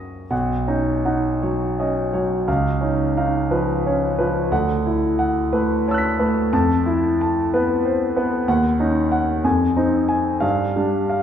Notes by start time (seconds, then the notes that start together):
Already playing: F#2 F#3 C#4 D#4 A#4 F#5 C#6 D#6 A#6
0.31 B1 F#5
0.67 C#4 D#4
1.05 D#4 F#5
1.42 F#3 C#5
1.79 C#4 D#5
2.13 F#3 C#5
2.48 C#2 F5
2.81 C#4 D#4
3.17 D#4 F5
3.51 F3 B4
3.86 C#4 C#5
4.19 F3 B4
4.52 D2 F#5
4.86 E4
5.19 F#5
5.53 A3 B4
5.88 C#5 A5 E6
5.94 F#6 B6
6.19 A3 B4
6.53 F2 A5
6.86 E4
7.21 A5
7.53 B3 B4
7.85 C5
8.16 B3 B4
8.48 D#2 F#5
8.80 C#4 D#4
9.12 F#5
9.44 F2 G#5
9.77 C4 D#4
10.09 G#5
10.40 G2 F5
10.76 G3 D4
11.10 F5